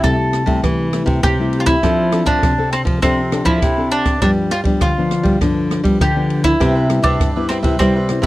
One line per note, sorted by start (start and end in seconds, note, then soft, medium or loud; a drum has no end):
0.00 0.13 C3 medium
0.00 0.61 C3 medium
0.00 0.44 G3 medium
0.00 0.60 A4 medium
0.00 kick medium
0.00 cross-stick medium
0.00 ride soft
0.04 0.44 A3 medium
0.04 0.44 E4 medium
0.33 cross-stick medium
0.33 ride soft
0.46 0.60 C3 medium
0.46 0.88 G3 medium
0.46 0.88 A3 medium
0.46 0.88 E4 medium
0.46 kick medium
0.46 ride soft
0.64 1.21 C3 medium
0.64 1.02 E3 medium
0.64 kick medium
0.64 cross-stick medium
0.64 ride soft
0.93 1.33 G3 medium
0.93 1.33 A3 medium
0.93 1.34 E4 medium
0.93 cross-stick medium
0.93 ride soft
1.06 1.20 C3 medium
1.06 kick medium
1.06 ride soft
1.23 1.74 C3 medium
1.23 1.80 C3 medium
1.23 1.60 G4 loud
1.23 kick medium
1.23 cross-stick medium
1.23 ride soft
1.39 1.79 G3 medium
1.39 1.79 A3 medium
1.39 1.79 E4 medium
1.53 ride soft
1.60 1.66 F4 medium
1.66 2.26 E4 medium
1.66 kick medium
1.66 cross-stick medium
1.66 ride medium
1.83 2.21 F3 medium
1.83 2.40 F3 medium
1.83 2.09 C4 medium
1.83 2.09 D4 medium
1.83 2.09 A4 medium
1.83 kick medium
1.83 cross-stick medium
1.83 ride soft
2.12 2.53 C4 medium
2.12 2.53 D4 medium
2.12 2.53 A4 medium
2.12 cross-stick medium
2.12 ride soft
2.26 2.52 F3 medium
2.26 2.69 D4 medium
2.26 kick medium
2.26 ride soft
2.43 2.99 C3 medium
2.43 kick medium
2.43 cross-stick medium
2.43 ride medium
2.58 2.98 C4 medium
2.58 2.98 D4 medium
2.58 2.99 A4 medium
2.72 2.81 C4 medium
2.72 cross-stick medium
2.72 ride soft
2.85 2.99 F3 medium
2.85 kick medium
2.85 ride soft
3.02 3.41 C3 medium
3.02 3.59 F3 medium
3.02 3.44 C4 medium
3.02 3.20 C4 medium
3.02 3.20 D4 medium
3.02 3.20 A4 medium
3.02 kick medium
3.02 cross-stick medium
3.02 ride medium
3.32 3.72 C4 medium
3.32 3.72 D4 medium
3.32 3.73 A4 medium
3.32 cross-stick medium
3.32 ride soft
3.45 3.59 F3 loud
3.45 3.88 E4 loud
3.45 kick medium
3.45 ride soft
3.62 4.19 C3 medium
3.62 4.13 C3 medium
3.62 kick medium
3.62 cross-stick medium
3.62 ride medium
3.78 4.17 C4 medium
3.78 4.18 D4 medium
3.78 4.18 A4 medium
3.91 4.21 D4 medium
3.91 ride soft
4.05 kick medium
4.05 cross-stick medium
4.05 ride soft
4.22 4.79 G2 medium
4.22 4.50 F3 medium
4.22 4.60 G3 medium
4.22 4.50 B3 medium
4.22 4.30 D4 medium
4.22 4.50 D4 medium
4.22 kick medium
4.22 cross-stick medium
4.22 ride soft
4.51 4.59 F4 medium
4.51 cross-stick medium
4.51 ride medium
4.64 4.91 F3 medium
4.64 4.90 G3 medium
4.64 4.92 B3 medium
4.64 4.92 D4 medium
4.64 kick medium
4.64 ride soft
4.81 5.39 D3 medium
4.81 5.37 F4 medium
4.81 kick medium
4.81 cross-stick medium
4.81 ride soft
4.98 5.37 F3 medium
4.98 5.37 B3 medium
4.98 5.38 D4 medium
5.11 cross-stick medium
5.11 ride soft
5.23 5.37 G3 medium
5.23 kick medium
5.23 ride soft
5.41 5.98 G2 medium
5.41 5.79 D3 medium
5.41 5.81 F3 medium
5.41 5.82 B3 medium
5.41 5.82 D4 medium
5.41 kick medium
5.41 cross-stick medium
5.41 ride soft
5.71 cross-stick medium
5.71 ride soft
5.84 6.11 F3 medium
5.84 5.97 G3 medium
5.84 6.11 B3 medium
5.84 6.11 D4 medium
5.84 kick medium
5.84 ride soft
6.01 6.52 D3 medium
6.01 6.58 D3 medium
6.01 6.44 G4 medium
6.01 kick medium
6.01 cross-stick medium
6.01 ride soft
6.16 6.56 F3 medium
6.16 6.56 B3 medium
6.16 6.56 D4 medium
6.30 ride soft
6.44 7.06 E4 medium
6.44 kick medium
6.44 cross-stick medium
6.44 ride medium
6.60 6.98 C3 medium
6.60 7.17 C3 medium
6.60 6.86 G3 medium
6.60 6.86 B3 soft
6.60 6.86 E4 medium
6.60 6.74 G4 medium
6.60 6.74 B4 medium
6.60 6.74 C5 medium
6.60 6.74 E5 medium
6.60 kick medium
6.60 cross-stick medium
6.60 ride soft
6.75 6.89 B4 soft
6.75 6.89 C5 soft
6.75 6.89 E5 soft
6.89 7.30 G3 medium
6.89 7.31 B3 medium
6.89 7.31 E4 medium
6.89 muted cavaquinho stroke soft
6.89 cross-stick medium
6.89 ride soft
7.02 7.29 C3 medium
7.02 7.48 D4 medium
7.02 7.33 B4 medium
7.02 7.34 C5 soft
7.02 7.33 E5 medium
7.02 kick medium
7.02 ride medium
7.20 7.77 G2 medium
7.20 kick medium
7.20 cross-stick medium
7.20 ride medium
7.36 7.61 G3 medium
7.36 7.61 B3 medium
7.36 7.61 E4 medium
7.36 7.49 B4 soft
7.36 7.49 C5 soft
7.36 7.49 E5 soft
7.49 7.57 C4 medium
7.49 7.63 G4 soft
7.49 7.63 B4 medium
7.49 7.63 C5 medium
7.49 7.62 E5 medium
7.49 cross-stick medium
7.49 ride soft
7.63 7.76 C3 medium
7.63 7.75 G3 medium
7.63 7.75 B3 medium
7.63 7.75 E4 medium
7.63 7.78 B4 medium
7.63 7.78 C5 medium
7.63 7.77 E5 medium
7.63 kick medium
7.63 ride medium
7.79 8.26 C3 medium
7.79 8.18 G3 medium
7.79 7.98 G3 medium
7.79 7.98 B3 medium
7.79 8.25 C4 medium
7.79 7.98 E4 medium
7.79 7.93 G4 medium
7.79 7.94 B4 medium
7.79 7.93 C5 medium
7.79 7.94 E5 medium
7.79 kick medium
7.79 cross-stick medium
7.79 ride medium
7.96 8.08 B4 soft
7.96 8.07 C5 soft
7.96 8.08 E5 soft
8.08 8.26 G3 medium
8.08 8.26 B3 medium
8.08 8.26 E4 medium
8.08 muted cavaquinho stroke soft
8.08 cross-stick medium
8.08 ride soft
8.22 8.26 C3 medium
8.22 8.26 E5 medium
8.22 kick medium
8.22 ride medium